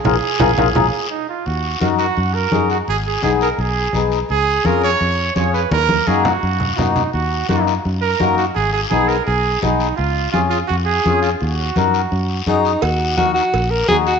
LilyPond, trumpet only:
\new Staff \with { instrumentName = "Trumpet" } { \time 4/4 \key bes \phrygian \tempo 4 = 169 aes'2. ees'8 f'8 | \key ees \minor ges'4 ges'8 ges'4 bes'4 ges'8 | aes'8 aes'8 aes'8 bes'8 aes'4. r8 | aes'4 bes'8 des''4. des''8 ces''8 |
bes'4 aes'8 ges'4. ees'4 | ges'4 ges'8 r4 bes'4 ges'8 | aes'8 aes'8 aes'8 bes'8 aes'4 ees'4 | f'4 f'8 f'8 ges'8 aes'4 f'8 |
ges'2. r4 | r1 | }